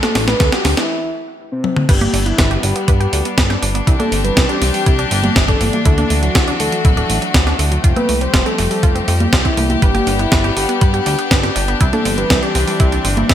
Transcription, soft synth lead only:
0.03 0.24 A4 loud
0.28 0.49 B4 medium
0.53 0.74 G4 medium
0.77 1.09 E4 loud
1.52 1.84 C4 loud
1.89 2.21 G4 loud
2.26 2.58 E4 loud
2.63 2.95 G4 loud
3.01 3.22 G4 medium
4.00 4.21 A4 loud
4.24 4.46 B4 medium
4.49 4.70 G4 loud
4.74 5.06 G4 loud
5.48 5.80 A4 loud
5.86 6.18 A4 loud
6.23 6.55 F#4 loud
6.60 6.92 A4 loud
6.97 7.19 A4 medium
7.96 8.18 B4 loud
8.21 8.42 C5 loud
8.46 8.67 A4 medium
8.71 9.03 A4 loud
9.45 9.77 E4 loud
9.82 10.14 G4 loud
10.20 10.51 E4 loud
10.57 10.89 G4 loud
10.94 11.15 G4 medium
11.93 12.14 A4 medium
12.18 12.39 B4 medium
12.43 12.64 G4 medium
12.68 12.99 G4 loud

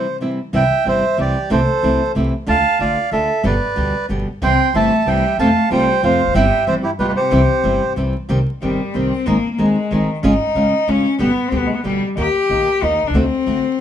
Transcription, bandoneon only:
0.00 0.17 C5 medium
0.55 0.84 E5 medium
0.55 0.88 G5 loud
0.88 1.17 C5 medium
0.88 1.20 E5 medium
1.21 1.50 G4 medium
1.21 1.50 D5 medium
1.52 2.12 A4 medium
1.52 2.12 C5 medium
2.48 2.78 F5 medium
2.48 2.81 A5 loud
2.81 3.10 D5 medium
2.81 3.10 F5 medium
3.13 3.42 A4 medium
3.13 3.45 E5 medium
3.46 4.06 B4 medium
3.46 4.06 D5 medium
4.43 4.73 G5 medium
4.43 4.76 C6 loud
4.76 5.05 E5 medium
4.76 5.08 A5 loud
5.07 5.37 E5 medium
5.07 5.37 G5 medium
5.40 5.69 F5 medium
5.40 5.69 A5 loud
5.72 6.02 C5 medium
5.72 6.05 G5 loud
6.04 6.34 C5 medium
6.04 6.34 F5 medium
6.35 6.65 E5 medium
6.35 6.65 G5 loud
6.67 6.75 C5 medium
6.67 6.74 E5 medium
6.83 6.91 E4 medium
6.83 6.90 G4 medium
6.99 7.07 G4 medium
6.99 7.07 B4 medium
7.08 7.12 G4 medium
7.08 7.12 B4 medium
7.16 7.93 G4 medium
7.16 7.93 C5 medium

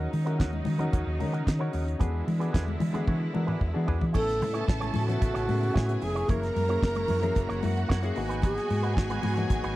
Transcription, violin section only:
4.14 5.72 A4 medium
4.14 5.72 A5 loud
5.75 6.28 G#4 medium
5.75 6.28 G#5 medium
6.29 7.60 A#4 medium
6.29 7.60 A#5 medium
7.63 8.15 F#4 medium
7.63 8.15 F#5 medium
8.16 9.76 G#4 medium
8.16 9.76 G#5 loud

